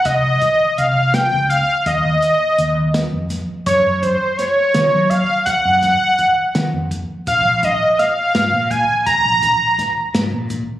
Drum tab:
HH |xxxxx|xxxxx|xxxxx|xxxxx|
SD |---o-|---oo|--oo-|-o-o-|
BD |oo---|o---o|oo--o|ooo-o|

HH |xxxxx|xxxxx|
SD |--oo-|--oo-|
BD |oo--o|ooo-o|